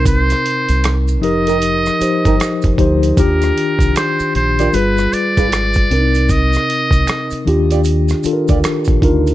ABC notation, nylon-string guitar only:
X:1
M:4/4
L:1/16
Q:"Swing 16ths" 1/4=77
K:Eb
V:1 name="Nylon-string guitar"
z6 z [EGB] z3 [EGB] z4 | z6 z [FGd] z3 [FA=B] z4 | z6 z [FGd] z3 [FGd] z4 |]